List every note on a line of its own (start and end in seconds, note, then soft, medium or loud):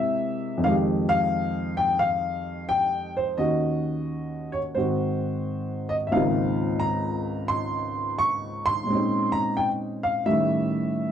0.00 0.62 C3 medium
0.00 0.62 G#3 soft
0.00 0.63 A#3 soft
0.00 0.63 C4 soft
0.00 0.64 E4 medium
0.00 0.59 E5 medium
0.58 3.35 F2 medium
0.58 3.37 D#3 medium
0.64 3.39 G#3 medium
0.64 0.74 F5 medium
0.68 3.41 G4 medium
1.09 1.74 F5 loud
1.77 1.98 G5 medium
1.99 2.64 F5 medium
2.69 3.12 G5 loud
3.17 3.37 C5 medium
3.38 4.75 D#2 soft
3.38 4.74 D#3 soft
3.38 4.76 C#4 soft
3.38 4.76 F#4 medium
3.38 4.49 D#5 medium
4.52 4.57 C#5 medium
4.75 6.11 G#2 soft
4.75 6.12 D#3 soft
4.75 6.13 C4 soft
4.75 6.14 F#4 medium
4.75 5.86 C5 medium
5.89 5.94 D#5 medium
6.07 6.12 E5 medium
6.12 8.87 C#2 medium
6.12 8.88 G#2 medium
6.12 8.88 D#3 medium
6.12 8.89 A#3 medium
6.12 8.88 C4 medium
6.12 6.83 F5 medium
6.16 8.90 F4 medium
6.80 7.45 A#5 loud
7.48 8.20 C6 loud
8.19 8.62 C#6 loud
8.66 9.30 C6 loud
8.84 10.24 A#2 soft
8.84 10.25 G#3 soft
8.89 10.26 C4 soft
8.89 10.25 C#4 soft
8.95 10.29 D#4 medium
9.32 9.56 A#5 medium
9.57 9.67 G5 medium
10.03 10.24 F5 medium
10.26 11.12 A2 soft
10.26 11.12 D#3 medium
10.26 11.12 G3 soft
10.26 11.12 C#4 soft
10.26 11.12 E5 medium